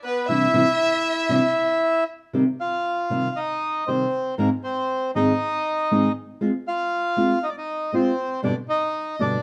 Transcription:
0.04 0.28 B3 medium
0.04 0.27 B4 medium
0.28 0.46 C3 medium
0.28 0.46 E3 medium
0.28 0.46 G3 medium
0.28 0.46 D4 medium
0.28 2.04 E4 medium
0.28 0.46 E4 medium
0.28 2.04 E5 medium
0.28 2.04 E5 loud
0.53 0.63 C3 medium
0.53 0.63 E3 medium
0.53 0.63 G3 medium
0.53 0.63 D4 medium
0.53 0.64 E4 medium
1.29 1.39 C3 medium
1.29 1.39 E3 medium
1.29 1.39 G3 medium
1.29 1.40 D4 medium
1.29 1.40 E4 medium
2.33 2.43 C3 medium
2.33 2.43 D#3 medium
2.33 2.43 G3 medium
2.33 2.43 C4 medium
2.33 2.43 G4 medium
2.61 3.33 F4 medium
2.61 3.40 F5 medium
3.10 3.28 C3 medium
3.10 3.28 D#3 medium
3.10 3.28 G3 medium
3.10 3.28 C4 medium
3.10 3.28 G4 medium
3.36 3.84 D#4 medium
3.36 3.89 D#5 medium
3.87 4.05 C3 soft
3.87 4.05 D#3 medium
3.87 4.05 G3 medium
3.87 4.35 C4 medium
3.87 4.05 C4 medium
3.87 4.05 G4 medium
3.87 4.35 C5 medium
4.38 4.47 G#2 medium
4.38 4.47 D#3 medium
4.38 4.48 G#3 medium
4.38 4.50 A#3 medium
4.38 4.48 C4 medium
4.38 4.48 D#4 medium
4.38 4.48 G#4 medium
4.38 4.50 A#4 medium
4.64 5.11 C4 medium
4.64 5.11 C5 medium
5.15 5.32 G#2 medium
5.15 5.32 D#3 medium
5.15 5.32 G#3 medium
5.15 5.32 C4 medium
5.15 6.12 D#4 medium
5.15 5.32 D#4 medium
5.15 5.32 G#4 medium
5.15 6.12 D#5 medium
5.91 6.08 G#2 medium
5.91 6.08 D#3 medium
5.91 6.08 G#3 medium
5.91 6.08 C4 medium
5.91 6.08 D#4 medium
5.91 6.08 G#4 medium
6.41 6.50 G#3 medium
6.41 6.50 C4 medium
6.41 6.50 F4 medium
6.68 7.39 F4 medium
6.68 7.45 F5 loud
7.17 7.33 G#3 medium
7.17 7.34 C4 medium
7.17 7.34 F4 medium
7.43 7.49 D#4 medium
7.43 7.50 D#5 medium
7.49 7.56 D5 medium
7.57 7.91 D#4 medium
7.57 7.95 D#5 medium
7.92 8.09 G#3 medium
7.92 8.10 C4 medium
7.92 8.40 C4 medium
7.92 8.10 F4 medium
7.92 8.41 C5 medium
8.43 8.52 G2 medium
8.43 8.52 B2 medium
8.43 8.52 D3 medium
8.43 8.52 G3 medium
8.43 8.53 B3 medium
8.43 8.55 D4 medium
8.43 8.53 G4 medium
8.43 8.56 D5 medium
8.68 9.16 D#4 medium
8.68 9.22 D#5 medium
9.19 9.36 G2 medium
9.19 9.36 B2 medium
9.19 9.37 D3 medium
9.19 9.37 G3 medium
9.19 9.37 B3 medium
9.19 9.42 D4 medium
9.19 9.37 G4 medium
9.19 9.42 D5 medium

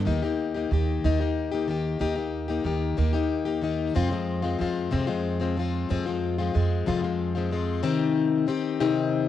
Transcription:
0.05 0.68 D#2 medium
0.05 0.22 D#3 medium
0.05 0.22 A#3 medium
0.05 0.23 D#4 medium
0.05 0.21 G4 medium
0.22 0.56 A#3 soft
0.22 0.55 D#4 soft
0.22 0.53 G4 soft
0.54 0.71 A#3 soft
0.54 0.71 D#4 soft
0.54 0.71 G4 soft
0.71 1.02 D#2 medium
0.71 1.03 D#3 soft
0.71 1.04 A#3 soft
0.71 1.04 D#4 medium
0.71 1.04 G4 medium
1.04 1.97 D#2 medium
1.04 1.20 D#3 medium
1.04 1.20 A#3 medium
1.04 1.19 D#4 medium
1.04 1.18 G4 medium
1.19 1.53 A#3 soft
1.19 1.52 D#4 soft
1.19 1.50 G4 soft
1.52 1.67 A#3 soft
1.52 1.68 D#4 soft
1.52 1.68 G4 soft
1.68 1.98 D#3 medium
1.68 1.99 A#3 medium
1.68 2.00 D#4 medium
1.68 2.00 G4 medium
1.99 2.62 D#2 medium
1.99 2.16 D#3 medium
1.99 2.17 A#3 medium
1.99 2.16 D#4 medium
1.99 2.14 G4 medium
2.15 2.50 A#3 soft
2.15 2.49 D#4 soft
2.15 2.47 G4 soft
2.48 2.64 A#3 soft
2.48 2.65 D#4 soft
2.48 2.65 G4 soft
2.64 2.96 D#2 medium
2.64 2.96 D#3 soft
2.64 2.96 A#3 soft
2.64 2.97 D#4 medium
2.64 2.98 G4 medium
2.97 3.91 D#2 medium
2.97 3.14 D#3 medium
2.97 3.14 A#3 medium
2.97 3.13 D#4 medium
2.97 3.12 G4 medium
3.13 3.47 A#3 soft
3.13 3.45 D#4 soft
3.13 3.44 G4 soft
3.45 3.62 A#3 soft
3.45 3.62 D#4 soft
3.45 3.62 G4 soft
3.62 3.94 D#3 medium
3.62 3.95 A#3 medium
3.62 3.95 D#4 medium
3.62 3.96 G4 medium
3.94 4.11 F2 medium
3.94 4.57 F2 medium
3.94 4.11 C3 medium
3.94 4.11 F3 medium
3.94 4.11 G#3 medium
3.94 4.10 C4 medium
3.94 4.09 F4 medium
4.10 4.44 F3 soft
4.10 4.43 G#3 soft
4.10 4.42 C4 soft
4.10 4.41 F4 medium
4.42 4.58 F3 soft
4.42 4.59 G#3 soft
4.42 4.60 C4 soft
4.42 4.59 F4 soft
4.59 4.91 F2 medium
4.59 4.91 F3 soft
4.59 4.91 G#3 medium
4.59 4.91 C4 medium
4.59 4.91 F4 medium
4.91 5.08 F2 medium
4.91 5.86 F2 medium
4.91 5.08 C3 medium
4.91 5.08 F3 medium
4.91 5.08 G#3 medium
4.91 5.07 C4 medium
4.91 5.06 F4 medium
5.07 5.41 F3 soft
5.07 5.41 G#3 soft
5.07 5.40 C4 soft
5.07 5.38 F4 medium
5.40 5.56 F3 soft
5.40 5.56 G#3 soft
5.40 5.57 C4 soft
5.40 5.57 F4 medium
5.57 5.89 F3 medium
5.57 5.89 G#3 medium
5.57 5.89 C4 medium
5.57 5.90 F4 medium
5.89 6.05 F2 medium
5.89 6.51 F2 medium
5.89 6.06 C3 medium
5.89 6.06 F3 medium
5.89 6.06 G#3 medium
5.89 6.06 C4 medium
5.89 6.05 F4 medium
6.06 6.40 F3 soft
6.06 6.39 G#3 soft
6.06 6.38 C4 soft
6.06 6.37 F4 soft
6.38 6.53 F3 soft
6.38 6.54 G#3 soft
6.38 6.54 C4 soft
6.38 6.55 F4 soft
6.54 6.86 F2 medium
6.54 6.86 F3 soft
6.54 6.86 G#3 medium
6.54 6.87 C4 soft
6.54 6.87 F4 medium
6.86 7.03 F2 medium
6.86 7.80 F2 medium
6.86 7.03 C3 medium
6.86 7.03 F3 medium
6.86 7.03 G#3 medium
6.86 7.02 C4 medium
6.86 7.01 F4 medium
7.02 7.36 F3 soft
7.02 7.36 G#3 soft
7.02 7.35 C4 soft
7.02 7.34 F4 soft
7.35 7.50 F3 soft
7.35 7.51 G#3 soft
7.35 7.51 C4 soft
7.35 7.51 F4 soft
7.51 7.83 F3 medium
7.51 7.83 G#3 medium
7.51 7.82 C4 medium
7.51 7.84 F4 medium
7.83 8.48 C3 medium
7.83 8.45 D#3 medium
7.83 8.47 C4 medium
7.83 8.48 D#4 medium
7.83 8.49 G4 loud
8.47 8.80 D#3 medium
8.47 8.80 C4 medium
8.47 8.79 D#4 medium
8.47 8.79 G4 medium
8.80 9.29 C3 medium
8.80 9.29 D#3 medium
8.80 9.29 C4 medium
8.80 9.29 D#4 medium
8.80 9.29 G4 medium

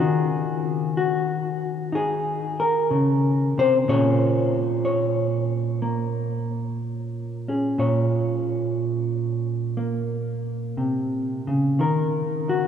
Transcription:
0.00 3.88 D#3 medium
0.00 1.91 D#4 soft
0.00 0.96 F#4 medium
0.97 1.94 F#4 medium
1.92 3.83 D#4 medium
1.92 3.58 G#4 medium
2.60 3.57 A#4 medium
2.91 3.57 C#3 medium
3.58 3.88 C3 medium
3.58 3.75 C5 loud
3.88 7.77 A#2 medium
3.88 5.82 A#3 medium
3.88 7.47 C#4 medium
3.88 7.48 G#4 soft
3.88 4.84 C#5 medium
4.85 7.78 C#5 medium
5.82 9.32 A#3 medium
7.48 10.80 C#4 soft
7.48 7.76 G#4 soft
7.78 10.77 A#2 medium
7.78 11.76 C#5 medium
9.77 11.79 A#3 medium
10.77 11.47 C3 medium
11.47 11.79 C#3 medium
11.79 12.68 D#3 medium
11.79 12.68 A#4 medium
12.49 12.68 F#4 medium

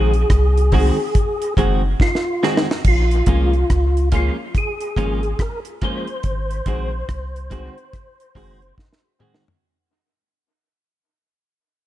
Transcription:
0.00 0.25 A#1 medium
0.00 0.11 D#3 medium
0.00 0.12 G#3 medium
0.00 0.12 C4 medium
0.00 0.12 F#4 medium
0.00 1.54 G#4 medium
0.14 closed hi-hat soft
0.30 0.91 C2 loud
0.30 kick loud
0.30 cross-stick loud
0.30 closed hi-hat medium
0.57 0.63 F#4 soft
0.57 0.63 G#4 soft
0.57 closed hi-hat medium
0.72 0.96 D#3 medium
0.72 0.97 G#3 medium
0.72 0.93 C4 medium
0.72 0.97 C4 medium
0.72 0.93 D#4 medium
0.72 0.94 F#4 medium
0.72 0.97 F#4 medium
0.72 0.94 G#4 loud
0.72 kick medium
0.72 open hi-hat medium
1.15 kick loud
1.15 closed hi-hat medium
1.42 closed hi-hat medium
1.57 1.94 F#1 medium
1.57 1.81 D#3 medium
1.57 1.81 G#3 medium
1.57 1.78 C4 medium
1.57 1.82 C4 medium
1.57 1.78 D#4 medium
1.57 1.79 F#4 medium
1.57 1.82 F#4 medium
1.57 1.79 G#4 loud
1.57 kick medium
1.57 closed hi-hat medium
2.00 2.44 F4 medium
2.00 kick loud
2.00 snare medium
2.15 snare medium
2.43 2.66 D#3 medium
2.43 2.66 G#3 medium
2.43 2.63 C4 medium
2.43 2.67 C4 medium
2.43 2.63 D#4 medium
2.43 2.63 F#4 medium
2.43 2.67 F#4 medium
2.43 2.64 G#4 loud
2.43 snare medium
2.57 snare medium
2.71 snare medium
2.84 3.22 A#1 loud
2.84 4.09 F4 medium
2.84 kick loud
2.84 crash medium
3.11 closed hi-hat soft
3.26 3.64 C2 medium
3.26 3.51 F3 medium
3.26 3.51 G#3 medium
3.26 3.48 A#3 medium
3.26 3.48 C#4 medium
3.26 3.51 C#4 medium
3.26 3.48 F4 medium
3.26 3.52 F4 medium
3.26 3.48 G#4 loud
3.26 kick loud
3.26 closed hi-hat medium
3.53 closed hi-hat soft
3.70 4.30 C#2 loud
3.70 kick loud
3.70 cross-stick loud
3.70 closed hi-hat medium
3.97 closed hi-hat soft
4.12 4.35 F3 medium
4.12 4.36 G#3 medium
4.12 4.33 A#3 medium
4.12 4.33 C#4 medium
4.12 4.36 C#4 loud
4.12 4.33 F4 medium
4.12 4.36 F4 loud
4.12 4.33 F4 medium
4.12 4.33 G#4 loud
4.12 kick medium
4.12 closed hi-hat medium
4.55 5.43 G#4 loud
4.55 kick loud
4.55 cross-stick medium
4.55 closed hi-hat medium
4.81 closed hi-hat medium
4.96 5.34 G#1 medium
4.96 5.20 F3 medium
4.96 5.20 G#3 medium
4.96 5.18 A#3 medium
4.96 5.18 C#4 medium
4.96 5.21 C#4 medium
4.96 5.21 F4 loud
4.96 5.18 F4 medium
4.96 5.18 G#4 loud
4.96 kick medium
4.96 closed hi-hat medium
5.23 5.30 F4 soft
5.23 5.30 G#4 soft
5.23 muted clean electric guitar stroke soft
5.23 closed hi-hat soft
5.39 5.60 A#4 loud
5.39 kick loud
5.39 cross-stick loud
5.39 closed hi-hat medium
5.65 5.72 F4 soft
5.65 5.72 G#4 soft
5.65 closed hi-hat medium
5.82 6.05 F3 medium
5.82 6.05 G#3 medium
5.82 6.03 A#3 medium
5.82 6.03 C#4 medium
5.82 6.06 C#4 medium
5.82 6.03 F4 medium
5.82 6.06 F4 loud
5.82 6.03 G#4 medium
5.82 8.75 C5 loud
5.82 kick medium
5.82 closed hi-hat medium
6.07 closed hi-hat soft
6.23 6.61 G#1 loud
6.23 kick loud
6.23 closed hi-hat medium
6.51 closed hi-hat soft
6.66 7.03 A#1 loud
6.66 6.90 D#3 medium
6.66 6.90 G#3 medium
6.66 6.87 C4 medium
6.66 6.90 C4 medium
6.66 6.87 D#4 medium
6.66 6.88 F#4 medium
6.66 6.91 F#4 medium
6.66 6.88 G#4 loud
6.66 kick medium
6.66 closed hi-hat medium
7.09 7.69 C2 loud
7.09 kick loud
7.09 cross-stick loud
7.09 closed hi-hat medium
7.36 closed hi-hat soft
7.50 7.74 D#3 medium
7.50 7.74 G#3 medium
7.50 7.71 C4 medium
7.50 7.75 C4 loud
7.50 7.72 D#4 medium
7.50 7.72 F#4 medium
7.50 7.75 F#4 medium
7.50 7.72 G#4 medium
7.50 kick medium
7.50 closed hi-hat medium
7.78 closed hi-hat soft
7.93 kick loud
7.93 cross-stick medium
7.93 closed hi-hat medium
8.20 closed hi-hat medium
8.35 8.72 F#1 medium
8.35 8.59 D#3 medium
8.35 8.59 G#3 medium
8.35 8.56 C4 medium
8.35 8.59 C4 medium
8.35 8.56 D#4 medium
8.35 8.57 F#4 medium
8.35 8.59 F#4 medium
8.35 8.57 G#4 loud
8.35 kick medium
8.35 open hi-hat medium
8.62 8.68 F#4 soft
8.62 8.68 G#4 soft
8.62 muted clean electric guitar stroke soft
8.62 closed hi-hat soft
8.78 kick loud
8.78 snare medium
8.93 snare medium
9.04 9.10 F#4 soft
9.04 9.11 G#4 soft
9.19 9.43 D#3 medium
9.19 9.44 G#3 medium
9.19 9.40 C4 medium
9.19 9.44 C4 medium
9.19 9.40 D#4 medium
9.19 9.41 F#4 medium
9.19 9.44 F#4 medium
9.19 9.41 G#4 loud
9.19 mid tom medium
9.34 snare medium
9.48 floor tom medium

